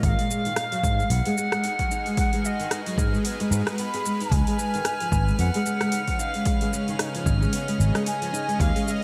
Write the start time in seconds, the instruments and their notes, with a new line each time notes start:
Already playing: synth drone C#5, synth texture F6
0.03 fretless electric bass G#1, nylon-string guitar G#3, synth drone G#3, bansuri F#5, kick, open hi-hat, shaker
0.08 bansuri F5
0.18 nylon-string guitar G#3, open hi-hat, shaker
0.30 nylon-string guitar G#3, synth drone G#4, shaker
0.42 nylon-string guitar D#3, synth drone D#4, open hi-hat, shaker
0.53 nylon-string guitar D#4, synth drone F#4, cross-stick, open hi-hat
0.57 shaker
0.72 nylon-string guitar F#3, open hi-hat, shaker
0.83 fretless electric bass G#2, nylon-string guitar D#4, kick, shaker
0.99 nylon-string guitar G#3, shaker
1.10 fretless electric bass B1, nylon-string guitar B3, bansuri F#5, open hi-hat, shaker
1.14 synth drone B4
1.25 nylon-string guitar G#3, open hi-hat, shaker
1.38 nylon-string guitar G#3, shaker
1.52 nylon-string guitar G#3, cross-stick, open hi-hat, shaker
1.64 nylon-string guitar D#4, open hi-hat, shaker
1.79 nylon-string guitar F#3, kick, open hi-hat, shaker
1.91 nylon-string guitar D#4, shaker
2.06 nylon-string guitar G#3, open hi-hat, shaker
2.17 nylon-string guitar G#3, bansuri F#5, kick, open hi-hat, shaker
2.33 nylon-string guitar G#3, open hi-hat, shaker
2.44 nylon-string guitar G#3, bansuri D#5, shaker
2.60 nylon-string guitar D#3, open hi-hat, shaker
2.71 nylon-string guitar D#4, cross-stick, open hi-hat, shaker
2.86 nylon-string guitar F#3, open hi-hat, shaker
2.98 fretless electric bass G#2, nylon-string guitar D#4, kick, shaker
3.13 nylon-string guitar G#3, shaker
3.25 nylon-string guitar B3, open hi-hat, shaker
3.40 nylon-string guitar G#3, open hi-hat, shaker
3.51 fretless electric bass G#2, shaker
3.67 nylon-string guitar G#3, cross-stick, open hi-hat, shaker
3.78 nylon-string guitar B3, bansuri B5, open hi-hat, shaker
3.94 nylon-string guitar G#4, open hi-hat, shaker
4.05 nylon-string guitar G#3, shaker
4.20 nylon-string guitar D#4, open hi-hat, shaker
4.31 fretless electric bass C#2, synth drone C#3, nylon-string guitar G#3, bansuri G#5, kick, open hi-hat, shaker
4.47 nylon-string guitar G#3, open hi-hat, shaker
4.59 synth drone C#4, shaker
4.74 nylon-string guitar D#3, open hi-hat, shaker
4.85 nylon-string guitar D#4, synth drone G#4, cross-stick, open hi-hat, shaker
5.00 nylon-string guitar F3, open hi-hat, shaker
5.12 fretless electric bass G#1, nylon-string guitar D#4, kick, shaker
5.28 nylon-string guitar G#3, shaker
5.39 fretless electric bass F2, nylon-string guitar B3, bansuri F#5, open hi-hat, shaker
5.54 nylon-string guitar G#3, open hi-hat, shaker
5.66 nylon-string guitar G#3, shaker
5.81 nylon-string guitar G#3, cross-stick, open hi-hat, shaker
5.92 nylon-string guitar D#4, open hi-hat, shaker
5.96 synth drone D#5
6.08 nylon-string guitar F3, kick, open hi-hat, shaker
6.19 nylon-string guitar D#4, bansuri F5, shaker
6.34 nylon-string guitar G#3, open hi-hat, shaker
6.45 nylon-string guitar G#3, kick, open hi-hat, shaker
6.61 nylon-string guitar G#3, open hi-hat, shaker
6.73 nylon-string guitar G#3, shaker
6.88 nylon-string guitar D#3, open hi-hat, shaker
6.99 nylon-string guitar D#4, cross-stick, open hi-hat, shaker
7.15 nylon-string guitar F3, open hi-hat, shaker
7.26 fretless electric bass G#1, nylon-string guitar D#4, kick, shaker
7.41 nylon-string guitar G#3, shaker
7.53 nylon-string guitar B3, open hi-hat, shaker
7.68 nylon-string guitar G#3, open hi-hat, shaker
7.79 fretless electric bass G#1, nylon-string guitar G#3, shaker
7.95 nylon-string guitar G#3, cross-stick, open hi-hat, shaker
8.06 nylon-string guitar D#4, bansuri G#5, open hi-hat, shaker
8.22 nylon-string guitar F3, open hi-hat, shaker
8.33 nylon-string guitar D#4, shaker
8.48 nylon-string guitar G#3, open hi-hat, shaker
8.60 fretless electric bass D#2, synth drone D#3, nylon-string guitar G#3, bansuri F5, kick, open hi-hat, shaker
8.75 nylon-string guitar G#3, open hi-hat, shaker
8.86 nylon-string guitar G#3, bansuri F5, shaker
8.91 bansuri D#5